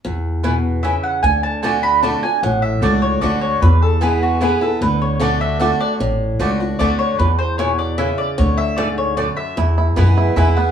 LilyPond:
<<
  \new Staff \with { instrumentName = "Mandolin" } { \time 3/4 \key e \mixolydian \tempo 4 = 151 r2 e''8 fis''8 | gis''8 a''8 gis''8 b''8 a''8 gis''8 | fis''8 e''8 d''8 cis''8 d''8 cis''8 | b'8 a'8 gis'8 fis'8 gis'8 a'8 |
b'8 cis''8 d''8 e''8 fis''8 d''8 | r2 d''8 cis''8 | b'8 c''8 cis''8 d''8 e''8 d''8 | cis''8 e''8 d''8 cis''8 d''8 e''8 |
r2 e''8 fis''8 | }
  \new Staff \with { instrumentName = "Mandolin" } { \time 3/4 \key e \mixolydian r4 <b e' b' gis''>8 r8 <b e' b' gis''>8 r8 | r4 <a fis' d'' a''>8 r8 <a fis' d'' a''>8 r8 | r4 <a fis' d'' a''>8 r8 <a fis' d'' a''>8 r8 | r4 <b e' b' gis''>8 r8 <b e' b' gis''>8 r8 |
r4 <a fis' d'' a''>8 r8 <a fis' d'' a''>8 r8 | r4 <a fis' d'' a''>8 r8 <a fis' d'' a''>8 r8 | r4 <b e' b' gis''>8 r8 <b e' b' gis''>8 r8 | r4 <a fis' d'' a''>8 r8 <a fis' d'' a''>8 r8 |
r4 <b e' b' gis''>8 r8 <b e' b' gis''>8 r8 | }
  \new Staff \with { instrumentName = "Five-string banjo" } { \time 3/4 \key e \mixolydian r2. | r2. | r2. | r2. |
r2. | r2. | r2. | r2. |
e'8 e'8 b8 e'8 e'8 b8 | }
  \new Staff \with { instrumentName = "Steel-string acoustic guitar" } { \time 3/4 \key e \mixolydian << { r2. | r4 <d a d' fis'>4 <d a d' fis'>8 <d' fis'>8 | r4 <a d' fis'>4 <d a d' fis'>4 | r4 <e gis b e'>4 <e gis b e'>8 <b e'>8 |
r4 <d a d' fis'>4 <d a d' fis'>4 | r4 <d a d' fis'>8 <d' fis'>8 <d a d' fis'>4 | r2. | r2. |
r4 <e gis b e'>4 <e gis b e'>4 | } \\ { e,4 b,4 cis4 | d2 r4 | a,2 r4 | e,2 r4 |
d2 r4 | a,2 r4 | e,4 b,4 cis4 | d4 gis,4 fis,4 |
e,2 r4 | } >> }
  \new Staff \with { instrumentName = "Upright bass" } { \clef bass \time 3/4 \key e \mixolydian e,2. | d,2. | a,,4 cis,4 d,4 | e,2. |
d,2. | a,,4 cis,4 d,4 | e,2. | d,2. |
e,4 fis,4 e,4 | }
>>